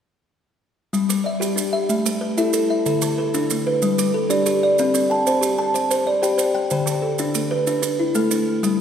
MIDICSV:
0, 0, Header, 1, 4, 480
1, 0, Start_track
1, 0, Tempo, 320856
1, 1399, Time_signature, 12, 3, 24, 8
1, 13177, End_track
2, 0, Start_track
2, 0, Title_t, "Kalimba"
2, 0, Program_c, 0, 108
2, 1394, Note_on_c, 0, 55, 73
2, 1876, Note_off_c, 0, 55, 0
2, 1885, Note_on_c, 0, 76, 56
2, 2107, Note_on_c, 0, 67, 73
2, 2567, Note_off_c, 0, 76, 0
2, 2585, Note_on_c, 0, 76, 64
2, 2834, Note_off_c, 0, 67, 0
2, 2834, Note_on_c, 0, 57, 74
2, 3071, Note_off_c, 0, 76, 0
2, 3307, Note_on_c, 0, 71, 61
2, 3316, Note_off_c, 0, 57, 0
2, 3552, Note_on_c, 0, 64, 68
2, 3557, Note_on_c, 0, 76, 65
2, 4026, Note_off_c, 0, 76, 0
2, 4032, Note_off_c, 0, 71, 0
2, 4035, Note_off_c, 0, 64, 0
2, 4044, Note_on_c, 0, 76, 62
2, 4280, Note_on_c, 0, 50, 74
2, 4520, Note_off_c, 0, 76, 0
2, 4758, Note_off_c, 0, 50, 0
2, 4758, Note_on_c, 0, 71, 57
2, 5003, Note_on_c, 0, 62, 76
2, 5464, Note_off_c, 0, 71, 0
2, 5480, Note_off_c, 0, 62, 0
2, 5482, Note_on_c, 0, 71, 59
2, 5721, Note_on_c, 0, 55, 78
2, 5959, Note_off_c, 0, 71, 0
2, 6197, Note_on_c, 0, 69, 60
2, 6198, Note_off_c, 0, 55, 0
2, 6434, Note_on_c, 0, 74, 65
2, 6437, Note_on_c, 0, 62, 74
2, 6912, Note_off_c, 0, 74, 0
2, 6916, Note_off_c, 0, 62, 0
2, 6916, Note_off_c, 0, 69, 0
2, 6930, Note_on_c, 0, 74, 67
2, 7174, Note_on_c, 0, 60, 85
2, 7402, Note_off_c, 0, 74, 0
2, 7644, Note_off_c, 0, 60, 0
2, 7646, Note_on_c, 0, 81, 62
2, 7893, Note_on_c, 0, 72, 77
2, 8336, Note_off_c, 0, 81, 0
2, 8354, Note_on_c, 0, 81, 63
2, 8364, Note_off_c, 0, 72, 0
2, 8590, Note_on_c, 0, 72, 78
2, 9072, Note_off_c, 0, 72, 0
2, 9074, Note_off_c, 0, 81, 0
2, 9078, Note_on_c, 0, 74, 63
2, 9315, Note_on_c, 0, 67, 72
2, 9318, Note_on_c, 0, 79, 59
2, 9774, Note_off_c, 0, 79, 0
2, 9792, Note_on_c, 0, 79, 65
2, 9795, Note_off_c, 0, 67, 0
2, 9796, Note_off_c, 0, 74, 0
2, 10044, Note_on_c, 0, 50, 76
2, 10274, Note_off_c, 0, 79, 0
2, 10520, Note_off_c, 0, 50, 0
2, 10764, Note_on_c, 0, 62, 76
2, 11233, Note_on_c, 0, 71, 61
2, 11240, Note_off_c, 0, 62, 0
2, 11477, Note_on_c, 0, 62, 75
2, 11955, Note_off_c, 0, 71, 0
2, 11957, Note_off_c, 0, 62, 0
2, 11960, Note_on_c, 0, 64, 60
2, 12196, Note_on_c, 0, 57, 76
2, 12197, Note_on_c, 0, 69, 61
2, 12677, Note_off_c, 0, 57, 0
2, 12680, Note_off_c, 0, 64, 0
2, 12913, Note_on_c, 0, 55, 78
2, 12919, Note_off_c, 0, 69, 0
2, 13177, Note_off_c, 0, 55, 0
2, 13177, End_track
3, 0, Start_track
3, 0, Title_t, "Kalimba"
3, 0, Program_c, 1, 108
3, 1633, Note_on_c, 1, 55, 80
3, 1856, Note_on_c, 1, 74, 62
3, 2095, Note_on_c, 1, 67, 66
3, 2115, Note_off_c, 1, 55, 0
3, 2331, Note_on_c, 1, 62, 76
3, 2586, Note_on_c, 1, 76, 64
3, 2587, Note_off_c, 1, 74, 0
3, 2825, Note_off_c, 1, 62, 0
3, 2826, Note_off_c, 1, 67, 0
3, 3074, Note_on_c, 1, 57, 75
3, 3312, Note_off_c, 1, 76, 0
3, 3556, Note_off_c, 1, 57, 0
3, 3569, Note_on_c, 1, 69, 64
3, 3769, Note_off_c, 1, 69, 0
3, 3790, Note_on_c, 1, 69, 77
3, 4261, Note_off_c, 1, 69, 0
3, 4279, Note_on_c, 1, 69, 61
3, 4517, Note_on_c, 1, 50, 82
3, 4753, Note_off_c, 1, 69, 0
3, 4771, Note_on_c, 1, 69, 60
3, 4997, Note_off_c, 1, 50, 0
3, 5015, Note_on_c, 1, 62, 66
3, 5249, Note_on_c, 1, 57, 74
3, 5484, Note_off_c, 1, 69, 0
3, 5488, Note_on_c, 1, 71, 70
3, 5723, Note_off_c, 1, 57, 0
3, 5725, Note_off_c, 1, 62, 0
3, 5961, Note_on_c, 1, 55, 82
3, 6202, Note_off_c, 1, 71, 0
3, 6425, Note_on_c, 1, 67, 63
3, 6438, Note_off_c, 1, 55, 0
3, 6654, Note_off_c, 1, 67, 0
3, 6672, Note_on_c, 1, 67, 82
3, 7150, Note_off_c, 1, 67, 0
3, 7168, Note_on_c, 1, 67, 59
3, 7390, Note_on_c, 1, 60, 84
3, 7627, Note_on_c, 1, 79, 62
3, 7642, Note_off_c, 1, 67, 0
3, 7872, Note_off_c, 1, 60, 0
3, 7876, Note_on_c, 1, 72, 67
3, 8098, Note_on_c, 1, 67, 77
3, 8351, Note_off_c, 1, 79, 0
3, 8356, Note_on_c, 1, 81, 69
3, 8586, Note_off_c, 1, 67, 0
3, 8595, Note_off_c, 1, 72, 0
3, 8835, Note_on_c, 1, 72, 82
3, 9075, Note_off_c, 1, 81, 0
3, 9283, Note_off_c, 1, 72, 0
3, 9301, Note_on_c, 1, 72, 62
3, 9522, Note_off_c, 1, 72, 0
3, 9540, Note_on_c, 1, 72, 78
3, 10020, Note_off_c, 1, 72, 0
3, 10038, Note_on_c, 1, 72, 66
3, 10261, Note_on_c, 1, 50, 83
3, 10502, Note_on_c, 1, 69, 63
3, 10517, Note_off_c, 1, 72, 0
3, 10748, Note_off_c, 1, 50, 0
3, 10753, Note_on_c, 1, 62, 61
3, 10991, Note_on_c, 1, 57, 71
3, 11229, Note_off_c, 1, 69, 0
3, 11232, Note_on_c, 1, 71, 64
3, 11474, Note_off_c, 1, 57, 0
3, 11475, Note_off_c, 1, 62, 0
3, 11702, Note_on_c, 1, 62, 79
3, 11955, Note_off_c, 1, 71, 0
3, 12171, Note_off_c, 1, 62, 0
3, 12189, Note_on_c, 1, 62, 59
3, 12411, Note_off_c, 1, 62, 0
3, 12430, Note_on_c, 1, 62, 72
3, 12902, Note_off_c, 1, 62, 0
3, 12920, Note_on_c, 1, 62, 64
3, 13177, Note_off_c, 1, 62, 0
3, 13177, End_track
4, 0, Start_track
4, 0, Title_t, "Drums"
4, 1403, Note_on_c, 9, 70, 52
4, 1552, Note_off_c, 9, 70, 0
4, 1643, Note_on_c, 9, 70, 66
4, 1793, Note_off_c, 9, 70, 0
4, 2125, Note_on_c, 9, 70, 54
4, 2275, Note_off_c, 9, 70, 0
4, 2359, Note_on_c, 9, 70, 70
4, 2509, Note_off_c, 9, 70, 0
4, 2835, Note_on_c, 9, 70, 50
4, 2984, Note_off_c, 9, 70, 0
4, 3080, Note_on_c, 9, 70, 61
4, 3229, Note_off_c, 9, 70, 0
4, 3555, Note_on_c, 9, 70, 51
4, 3704, Note_off_c, 9, 70, 0
4, 3788, Note_on_c, 9, 70, 62
4, 3937, Note_off_c, 9, 70, 0
4, 4278, Note_on_c, 9, 70, 49
4, 4428, Note_off_c, 9, 70, 0
4, 4512, Note_on_c, 9, 70, 59
4, 4662, Note_off_c, 9, 70, 0
4, 5001, Note_on_c, 9, 70, 56
4, 5150, Note_off_c, 9, 70, 0
4, 5239, Note_on_c, 9, 70, 63
4, 5389, Note_off_c, 9, 70, 0
4, 5716, Note_on_c, 9, 70, 52
4, 5866, Note_off_c, 9, 70, 0
4, 5962, Note_on_c, 9, 70, 61
4, 6111, Note_off_c, 9, 70, 0
4, 6436, Note_on_c, 9, 70, 53
4, 6585, Note_off_c, 9, 70, 0
4, 6674, Note_on_c, 9, 70, 60
4, 6824, Note_off_c, 9, 70, 0
4, 7157, Note_on_c, 9, 70, 49
4, 7307, Note_off_c, 9, 70, 0
4, 7398, Note_on_c, 9, 70, 60
4, 7548, Note_off_c, 9, 70, 0
4, 7878, Note_on_c, 9, 70, 57
4, 8028, Note_off_c, 9, 70, 0
4, 8119, Note_on_c, 9, 70, 67
4, 8269, Note_off_c, 9, 70, 0
4, 8605, Note_on_c, 9, 70, 49
4, 8755, Note_off_c, 9, 70, 0
4, 8841, Note_on_c, 9, 70, 61
4, 8991, Note_off_c, 9, 70, 0
4, 9325, Note_on_c, 9, 70, 52
4, 9474, Note_off_c, 9, 70, 0
4, 9556, Note_on_c, 9, 70, 68
4, 9705, Note_off_c, 9, 70, 0
4, 10029, Note_on_c, 9, 70, 48
4, 10179, Note_off_c, 9, 70, 0
4, 10277, Note_on_c, 9, 70, 56
4, 10426, Note_off_c, 9, 70, 0
4, 10748, Note_on_c, 9, 70, 53
4, 10898, Note_off_c, 9, 70, 0
4, 10989, Note_on_c, 9, 70, 62
4, 11139, Note_off_c, 9, 70, 0
4, 11474, Note_on_c, 9, 70, 51
4, 11624, Note_off_c, 9, 70, 0
4, 11709, Note_on_c, 9, 70, 63
4, 11859, Note_off_c, 9, 70, 0
4, 12190, Note_on_c, 9, 70, 50
4, 12340, Note_off_c, 9, 70, 0
4, 12431, Note_on_c, 9, 70, 66
4, 12580, Note_off_c, 9, 70, 0
4, 12919, Note_on_c, 9, 70, 49
4, 13068, Note_off_c, 9, 70, 0
4, 13177, End_track
0, 0, End_of_file